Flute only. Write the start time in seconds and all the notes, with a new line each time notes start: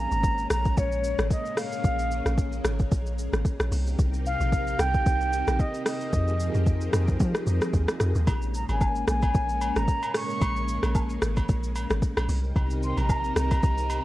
Already playing: A#5
0.51 A#5
0.78 C#5
1.31 D#5
1.58 F5
4.26 F5
4.80 G5
5.60 D#5
5.87 D#5
8.55 A#5
8.69 G#5
9.09 G#5
9.77 A#5
10.16 C#6
12.84 C6
12.98 A#5
13.37 A#5